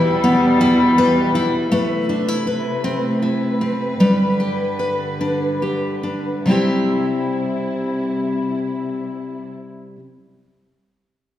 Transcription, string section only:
Already playing: E2 B2 G3
1.72 C3 A3 B4
4.02 G2 D3
6.47 C3 G3 E4

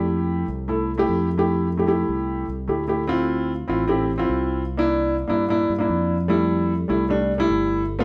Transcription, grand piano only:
Already playing: A3 E4 G4
0.68 A3 E4 A4
0.98 A3 E4 G4
1.38 A3 E4 G4
1.77 A3 E4 G4
1.87 A3 E4 G4
2.68 A3 E4 G4
2.88 A3 E4 G4
3.07 C4 E4 F4
3.68 C4 E4 F4
3.87 C4 E4 G4
4.18 C4 E4 F4
4.77 A#3 D4 E4
5.28 A#3 D4 E4
5.49 A#3 D4 E4
5.79 A#3 D4 E4
6.28 G3 A3 E4
6.88 G3 A3 E4
7.09 G3 A3 D4
7.38 G3 A3 E4
7.99 A3 B3 F4

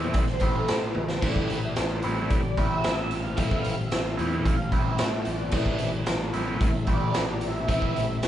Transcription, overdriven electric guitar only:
Already playing: E3 A3 C4 E4
0.42 E3 A3 C4 E4
1.22 E3 A3 C4 E4
2.04 E3 A3 C4 E4
2.58 E3 A3 C4 E4
3.37 E3 A3 C4 E4
4.18 E3 A3 C4 E4
4.72 E3 A3 C4 E4
5.52 E3 A3 C4 E4
6.34 E3 A3 C4 E4
6.88 E3 A3 C4 E4
7.68 E3 A3 C4 E4

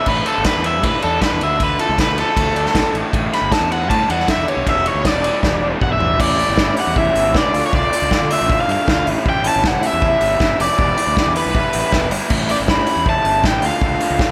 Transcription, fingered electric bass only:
0.07 A1
0.38 G1
0.57 E2
0.83 A2
1.04 E2
1.32 E2
1.41 D2
1.89 C#2
2.07 D2
2.37 D2
2.75 B1
2.94 A1
3.13 A1
3.41 G1
3.61 E2
3.90 A2
4.09 E2
4.38 E2
4.57 B1
4.67 E1
4.94 D2
5.13 E1
5.43 E1
5.81 B1
6.01 A1
6.20 A1
6.48 G1
6.68 A2
6.87 E2
7.15 G1
7.35 C#2
7.54 D2
7.73 C#2
8.02 C#2
8.22 D3
8.41 A1
8.68 G2
8.88 D2
9.07 A1
9.26 A1
9.56 G1
9.75 A2
9.93 E2
10.22 G1
10.41 G1
10.60 F1
10.79 E1
11.07 D2
11.27 E2
11.46 B1
11.75 A1
11.93 E1
12.11 G1
12.31 A1
12.60 G1
12.77 A2
12.96 E2
13.24 G1
13.44 A1
13.62 D2
13.81 C#2
14.10 C#2

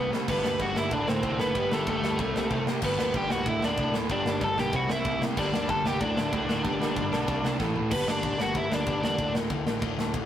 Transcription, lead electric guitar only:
0.30 B3 B4
0.61 F#4 F#5
0.77 E4 E5
0.93 D4 D5
1.08 C4 C5
1.40 B3 B4
1.73 A3 A4
1.89 A3 A4
2.85 B3 B4
3.16 G4 G5
3.31 F#4 F#5
3.48 E4 E5
3.64 D4 D5
4.11 D4 D5
4.44 A4 A5
4.59 G4 G5
4.75 F#4 F#5
4.92 E4 E5
5.38 D4 D5
5.69 A4 A5
5.86 G4 G5
6.00 D4 D5
7.92 B3 B4
8.08 D4 D5
8.41 F#4 F#5
8.57 E4 E5
8.72 D4 D5
9.03 D4 D5

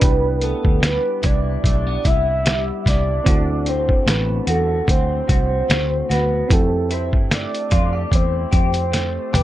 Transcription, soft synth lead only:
Already playing: B4
0.43 A4
0.85 B4
1.26 D5
1.66 D5
2.07 E5
2.88 D5
3.69 C5
4.09 B4
4.49 A4
4.90 C5
5.32 C5
6.12 B4
6.53 A4
6.93 C5
7.34 D5
8.15 C5
8.56 C5
9.36 B4

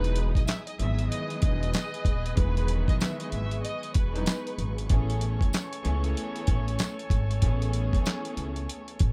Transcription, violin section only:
Already playing: B4
0.36 D#5
0.48 E5
0.67 D#5
0.80 E5
1.11 D#5
1.43 D#5
2.38 B4
2.88 D#5
3.01 E5
3.20 D#5
3.32 E5
3.63 D#5
3.96 B4

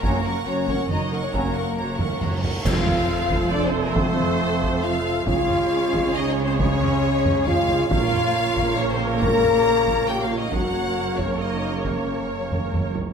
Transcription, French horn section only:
0.04 A#3
0.47 C#4
0.90 D#4
1.25 C#4
1.35 A#3
2.66 F4
3.53 D4
3.70 C4
3.83 A#3
3.97 C4
4.84 F4
5.27 F4
6.17 D#4
6.34 C#4
6.47 C4
6.60 C#4
7.46 F4
7.89 F4
8.79 C#4
8.95 C4
9.09 A#3
9.23 A#4
10.11 G4
10.27 F4
10.42 D#4
10.55 F#4
11.20 C#4
11.42 D#4
11.86 C#4

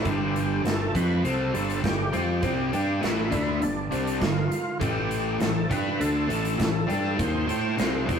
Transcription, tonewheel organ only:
0.07 G4
0.65 A4
0.95 B4
1.26 A4
1.84 G4
2.43 G4
3.02 E4
3.63 D4
4.23 F4
4.82 G4
5.41 A4
5.71 B4
6.01 A4
6.61 A4
7.20 C5
7.80 C5

